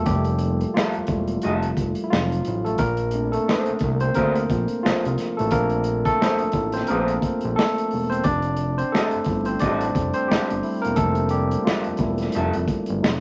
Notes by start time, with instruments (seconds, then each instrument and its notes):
Already playing: tine electric piano F3 G3 A3 A#3 E4 F4 A4 A#4
0.06 analog synth bass F1, tine electric piano G3 G4, kick, closed hi-hat
0.24 closed hi-hat
0.39 closed hi-hat
0.61 closed hi-hat
0.74 tine electric piano F3 F4, clean electric guitar G4 A4 E5, finger snap, snare
0.93 analog synth bass E1, closed hi-hat
1.07 analog synth bass E1, tine electric piano G3 A3 E4, kick, closed hi-hat
1.27 closed hi-hat
1.42 analog synth bass F1, clean electric guitar G4 A4 E5, closed hi-hat
1.63 closed hi-hat
1.77 analog synth bass F1, kick, closed hi-hat
1.95 closed hi-hat
2.04 tine electric piano E4
2.10 analog synth bass F1, tine electric piano F3 F#3 A3 D#4 F4, finger snap, snare
2.32 closed hi-hat
2.45 analog synth bass A1, closed hi-hat
2.65 tine electric piano A3 A4, closed hi-hat
2.78 analog synth bass A#1, tine electric piano A#3 A#4, kick, closed hi-hat
2.97 closed hi-hat
3.11 tine electric piano A3 C4 D4, closed hi-hat
3.32 tine electric piano A3 A4, closed hi-hat
3.48 clean electric guitar D4 A4 C5, finger snap, snare
3.66 analog synth bass C2, closed hi-hat
3.79 analog synth bass C2, kick, closed hi-hat
4.00 tine electric piano C4 C5, closed hi-hat
4.14 analog synth bass D2, tine electric piano A#3 A#4, clean electric guitar D4 A4 C5, kick, closed hi-hat
4.35 closed hi-hat
4.50 analog synth bass A#1, kick, closed hi-hat
4.68 closed hi-hat
4.83 analog synth bass C2, tine electric piano F3 F4, clean electric guitar D4 A4 C5, finger snap, snare
5.05 analog synth bass C2, closed hi-hat
5.18 snare, closed hi-hat
5.37 analog synth bass A1, tine electric piano A3 A4, closed hi-hat
5.51 analog synth bass A#1, tine electric piano F3 A#3 C4 D4 A#4, kick, closed hi-hat
5.70 closed hi-hat
5.84 closed hi-hat
6.05 tine electric piano A3 A4, kick, closed hi-hat
6.21 clean electric guitar D4 A4 C5, finger snap, snare
6.38 closed hi-hat
6.42 analog synth bass A1
6.52 analog synth bass A1, kick, closed hi-hat
6.72 tine electric piano C4 C5, snare, closed hi-hat
6.87 tine electric piano A#3 A#4, clean electric guitar D4 A4 C5, closed hi-hat
6.91 analog synth bass A#1
7.08 closed hi-hat
7.22 kick, closed hi-hat
7.41 analog synth bass A#1, closed hi-hat
7.56 tine electric piano A3 A4, finger snap, snare
7.78 closed hi-hat
7.91 analog synth bass E1, open hi-hat
8.10 tine electric piano C4 C5, closed hi-hat
8.24 analog synth bass F1, tine electric piano D4 D5, kick, closed hi-hat
8.42 closed hi-hat
8.56 closed hi-hat
8.78 tine electric piano C4 C5, closed hi-hat
8.92 tine electric piano A3 A4, clean electric guitar G4 A4 E5, finger snap, snare
9.11 analog synth bass G1, closed hi-hat
9.24 analog synth bass G1, tine electric piano G3 A3 E4, kick, closed hi-hat
9.45 tine electric piano C4 C5, closed hi-hat
9.59 analog synth bass A1, tine electric piano D4 D5, clean electric guitar G4 A4, kick, closed hi-hat
9.64 clean electric guitar E5
9.80 closed hi-hat
9.95 analog synth bass F1, kick, closed hi-hat
10.13 tine electric piano C4 C5, closed hi-hat
10.28 analog synth bass G1, tine electric piano G3 G4, clean electric guitar G4 A4, finger snap, snare
10.32 clean electric guitar E5
10.50 analog synth bass G1, closed hi-hat
10.63 tine electric piano G3 A3 E4, open hi-hat
10.82 analog synth bass E1, tine electric piano A#3 A#4, closed hi-hat
10.96 analog synth bass F1, tine electric piano A3 A4, kick, closed hi-hat
11.15 closed hi-hat
11.29 tine electric piano G3 G4, closed hi-hat
11.51 closed hi-hat
11.65 tine electric piano F3 F4, clean electric guitar G4 A4, finger snap, snare
11.69 clean electric guitar E5
11.84 analog synth bass E1, closed hi-hat
11.97 analog synth bass E1, tine electric piano G3 A3 E4, kick, closed hi-hat
12.18 snare, closed hi-hat
12.32 analog synth bass F1, clean electric guitar G4 A4, closed hi-hat
12.37 clean electric guitar E5
12.53 analog synth bass F1, closed hi-hat
12.68 kick, closed hi-hat
12.86 analog synth bass G1, closed hi-hat
13.01 analog synth bass F1, tine electric piano F#3 A3 D#4, finger snap, snare